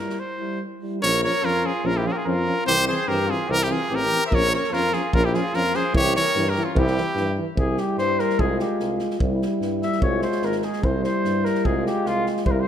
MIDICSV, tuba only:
0, 0, Header, 1, 2, 480
1, 0, Start_track
1, 0, Tempo, 411241
1, 228, Time_signature, 2, 2, 24, 8
1, 5025, Tempo, 407332
1, 14890, End_track
2, 0, Start_track
2, 0, Title_t, "Tuba"
2, 0, Program_c, 0, 58
2, 1201, Note_on_c, 0, 34, 123
2, 1464, Note_off_c, 0, 34, 0
2, 1671, Note_on_c, 0, 41, 80
2, 1937, Note_off_c, 0, 41, 0
2, 2145, Note_on_c, 0, 34, 114
2, 2412, Note_off_c, 0, 34, 0
2, 2639, Note_on_c, 0, 41, 90
2, 2902, Note_off_c, 0, 41, 0
2, 3120, Note_on_c, 0, 36, 110
2, 3382, Note_off_c, 0, 36, 0
2, 3593, Note_on_c, 0, 43, 90
2, 3856, Note_off_c, 0, 43, 0
2, 4072, Note_on_c, 0, 36, 109
2, 4335, Note_off_c, 0, 36, 0
2, 4548, Note_on_c, 0, 33, 80
2, 4811, Note_off_c, 0, 33, 0
2, 5033, Note_on_c, 0, 34, 107
2, 5296, Note_off_c, 0, 34, 0
2, 5512, Note_on_c, 0, 41, 80
2, 5775, Note_off_c, 0, 41, 0
2, 6002, Note_on_c, 0, 34, 120
2, 6263, Note_off_c, 0, 34, 0
2, 6484, Note_on_c, 0, 41, 75
2, 6744, Note_off_c, 0, 41, 0
2, 6950, Note_on_c, 0, 36, 114
2, 7214, Note_off_c, 0, 36, 0
2, 7438, Note_on_c, 0, 43, 91
2, 7700, Note_off_c, 0, 43, 0
2, 7904, Note_on_c, 0, 36, 124
2, 8170, Note_off_c, 0, 36, 0
2, 8379, Note_on_c, 0, 43, 93
2, 8647, Note_off_c, 0, 43, 0
2, 8856, Note_on_c, 0, 36, 105
2, 9125, Note_off_c, 0, 36, 0
2, 9342, Note_on_c, 0, 43, 79
2, 9609, Note_off_c, 0, 43, 0
2, 9838, Note_on_c, 0, 36, 105
2, 10102, Note_off_c, 0, 36, 0
2, 10317, Note_on_c, 0, 36, 72
2, 10581, Note_off_c, 0, 36, 0
2, 10790, Note_on_c, 0, 36, 95
2, 11055, Note_off_c, 0, 36, 0
2, 11263, Note_on_c, 0, 43, 77
2, 11531, Note_off_c, 0, 43, 0
2, 11732, Note_on_c, 0, 36, 101
2, 12002, Note_off_c, 0, 36, 0
2, 12221, Note_on_c, 0, 32, 78
2, 12488, Note_off_c, 0, 32, 0
2, 12706, Note_on_c, 0, 36, 107
2, 12972, Note_off_c, 0, 36, 0
2, 13207, Note_on_c, 0, 43, 75
2, 13466, Note_off_c, 0, 43, 0
2, 13677, Note_on_c, 0, 36, 105
2, 13938, Note_off_c, 0, 36, 0
2, 14156, Note_on_c, 0, 36, 75
2, 14417, Note_off_c, 0, 36, 0
2, 14624, Note_on_c, 0, 36, 104
2, 14887, Note_off_c, 0, 36, 0
2, 14890, End_track
0, 0, End_of_file